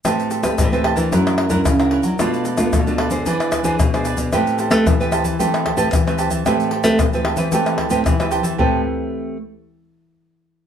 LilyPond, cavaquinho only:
\new Staff \with { instrumentName = "Cavaquinho" } { \time 4/4 \key a \minor \tempo 4 = 113 <g' c'' e'' a''>8 <g' c'' e'' a''>8. <c'' e'' a''>16 <g' c'' e'' a''>16 <c'' e'' a''>16 <e' ais' cis'' fis''>8 <e' ais' cis'' fis''>16 <e' ais' cis'' fis''>16 r16 <ais' cis'' fis''>16 <e' ais' cis'' fis''>16 <ais' cis'' fis''>16 | <f' a' b' d''>8 <f' a' b' d''>8. <a' b' d''>16 <f' a' b' d''>16 <a' b' d''>16 <e' gis' b' d''>8 <e' gis' b' d''>16 <e' gis' b' d''>16 r16 <gis' b' d''>16 <e' gis' b' d''>16 <gis' d''>16 | <g' c'' e'' a''>8 <g' c'' e'' a''>8. <c'' e'' a''>16 <g' c'' e'' a''>16 <c'' e'' a''>16 <g' c'' e'' a''>8 <g' c'' e'' a''>16 <g' c'' e'' a''>16 r16 <c'' e'' a''>16 <g' c'' e'' a''>16 <c'' e'' a''>16 | <g' c'' e'' a''>8 <g' c'' e'' a''>8. <c'' e'' a''>16 <g' c'' e'' a''>16 <c'' e'' a''>16 <g' c'' e'' a''>8 <g' c'' e'' a''>16 <g' c'' e'' a''>16 r16 <c'' e'' a''>16 <g' c'' e'' a''>16 <c'' e'' a''>16 |
<g' c'' e'' a''>8 r2. r8 | }